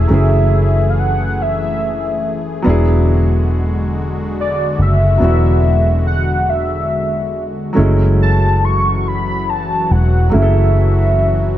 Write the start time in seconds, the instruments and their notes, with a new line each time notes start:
Already playing: analog synth pad E3 A3 G#4, soft synth lead E5
0.08 fingered electric bass F#1, grand piano F#3 A3 C#4
0.12 grand piano E4 G#4
0.90 soft synth lead F5
0.99 soft synth lead F#5
1.42 soft synth lead E5
2.62 analog synth pad D3 G#3 F#4, grand piano F#3 B3 D4
2.67 fingered electric bass E1, grand piano E4 G#4
4.40 soft synth lead D5
4.79 fingered electric bass F#1, soft synth lead E5
5.18 grand piano F#3 B3 D4
5.22 fingered electric bass E1, grand piano E4 F#4
6.07 soft synth lead F#5
6.49 soft synth lead E5
7.73 analog synth pad E3 F#3 F#4, grand piano F#3 A3 C#4
7.77 fingered electric bass F#1, grand piano G#3 E4
8.22 soft synth lead A5
8.65 soft synth lead C#6
9.08 soft synth lead B5
9.49 soft synth lead A5
9.91 fingered electric bass E1, soft synth lead F#5
10.30 grand piano F#3 A3 C#4, soft synth lead E5
10.34 fingered electric bass F#1, grand piano E4 G#4
10.42 grand piano A4